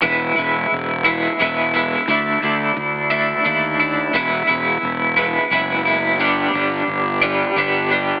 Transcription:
<<
  \new Staff \with { instrumentName = "Clean electric guitar" } { \time 6/8 \key d \lydian \tempo 4. = 58 <e gis b e'>8 <gis b e'>4 <e gis b e'>8 <e gis b e'>8 <gis b e'>8 | <d a d' e'>8 <a d' e'>4 <d a d' e'>8 <d a d' e'>8 <a d' e'>8 | <e gis b e'>8 <gis b e'>4 <e gis b e'>8 <e gis b e'>8 <gis b e'>8 | <g, d g b d'>8 <g b d'>4 <g, d g b d'>8 <d g b d'>8 <g b d'>8 | }
  \new Staff \with { instrumentName = "Fingered electric bass" } { \clef bass \time 6/8 \key d \lydian e,,8 e,,8 e,,4 e,,4 | d,8 d,8 d,4 dis,4 | e,,8 e,,8 e,,4 fis,,4 | g,,8 g,,8 g,,4 g,,4 | }
>>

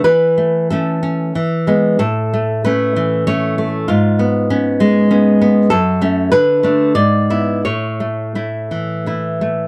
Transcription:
\new Staff \with { instrumentName = "Nylon-string guitar" } { \time 3/4 \key a \major \tempo 4 = 93 << { b'4 a'4 r4 | a'4 b'4 cis''4 | eis'2~ eis'8 r8 | a'4 b'4 d''4 |
cis''2 r4 | } \\ { e8 a8 <a cis'>8 cis'8 e8 <gis b>8 | a,8 a8 <a cis'>8 e8 <a cis'>8 a8 | gis,8 b8 <b cis'>8 gis8 <b cis'>8 b8 | fis,8 <a cis'>8 d8 <a d'>8 gis,8 <b e'>8 |
a,8 a8 <a e'>8 e8 <a e'>8 a8 | } >> }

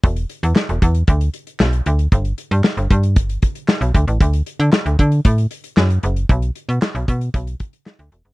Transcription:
<<
  \new Staff \with { instrumentName = "FM bass" } { \clef bass \time 4/4 \key e \minor \tempo 4 = 115 e,,8 r16 e,16 r16 e,,16 e,8 d,8 r8 b,,8 d,8 | g,,8 r16 g,16 r16 g,,16 g,8 g,,8 r8. b,,16 d,16 a,,16 | d,8 r16 d16 r16 d,16 d8 a,8 r8 fis,8 fis,,8 | b,,8 r16 b,16 r16 b,,16 b,8 b,,8 r8. d,16 e,,16 fis,,16 | }
  \new DrumStaff \with { instrumentName = "Drums" } \drummode { \time 4/4 <hh bd>16 hh16 hh16 hh16 <hc sn>16 hh16 <hh bd>16 hh16 <hh bd>16 hh16 hh16 hh16 <hc sn>16 hh16 hh16 hh16 | <hh bd>16 hh16 hh16 hh16 <hc sn>16 hh16 <hh bd>16 hh16 <hh bd>16 hh16 <hh bd>16 hh16 <hc sn>16 hh16 <hh bd>16 hh16 | <hh bd>16 hh16 hh16 hh16 <hc sn>16 hh16 <hh bd>16 hh16 <hh bd>16 hh16 hh16 hh16 <hc sn>16 hh16 hh16 hh16 | <hh bd>16 hh16 hh16 hh16 <hc sn>16 hh16 <hh bd>16 hh16 <hh bd>16 hh16 <hh bd>16 hh16 <hc sn>16 hh16 hh16 hh16 | }
>>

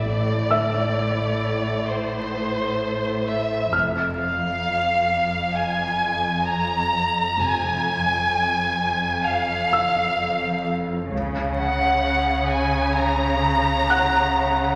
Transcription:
<<
  \new Staff \with { instrumentName = "Grand piano" } { \time 4/4 \key f \major \tempo 4 = 65 r8 <e'' e'''>2. r8 | f'''2. r4 | r2 r8 e'''4.~ | e'''4. r4. <fis'' fis'''>4 | }
  \new Staff \with { instrumentName = "Violin section" } { \time 4/4 \key f \major d''2 c''4. e''8 | r8 f''4. aes''4 bes''4 | aes''2 f''4. r8 | r8 fis''4 gis''8 bes''2 | }
  \new Staff \with { instrumentName = "Cello section" } { \clef bass \time 4/4 \key f \major a,1 | f,1 | f,1 | cis1 | }
  \new Staff \with { instrumentName = "Double bass section" } { \clef bass \time 4/4 \key f \major a,,4 r2. | f,,4 r2. | f,,4 r2. | cis,4 r2. | }
  \new Staff \with { instrumentName = "Sub bass" } { \clef bass \time 4/4 \key f \major a,,1 | f,,1 | f,,1 | cis,1 | }
>>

